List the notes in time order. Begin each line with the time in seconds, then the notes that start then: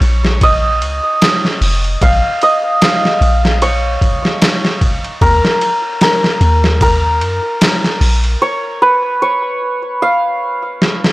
Already playing: C#5
0.01 A#1, ride
0.25 snare
0.41 D#5, kick, ride
0.81 C#2, ride
1.22 snare, ride
1.45 snare
1.61 F1, open hi-hat
1.84 ride
2.02 A#1 F5, kick, ride
2.41 D#5, ride
2.82 F5, snare, ride
3.05 snare
3.21 A#1, ride
3.45 snare
3.62 C#5, ride
4.01 kick, ride
4.25 snare
4.42 snare, ride
4.65 snare
4.81 kick, ride
5.04 ride
5.21 D#2 A#4, kick, ride
5.45 snare
5.61 ride
6.01 A#4, snare, ride
6.24 snare
6.41 D#2, ride
6.64 snare
6.81 A#4, kick, ride
7.20 F#2, ride
7.61 snare, ride
7.84 snare
8.01 A#1, open hi-hat
8.24 ride
8.42 C#5
8.82 B4
9.22 C#5
10.02 F5
10.82 snare
11.04 snare